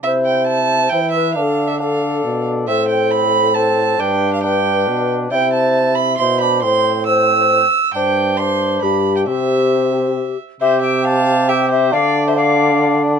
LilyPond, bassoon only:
\new Staff \with { instrumentName = "Bassoon" } { \time 3/4 \key c \major \tempo 4 = 136 e'2 e'4 | d'4 d'2 | c'2 c'4 | d'4 d'2 |
e'2 e'8 d'8 | c'4 c'4. r8 | d'4 d'4 d'4 | c'2~ c'8 r8 |
g'2 g'4 | d'4 d'2 | }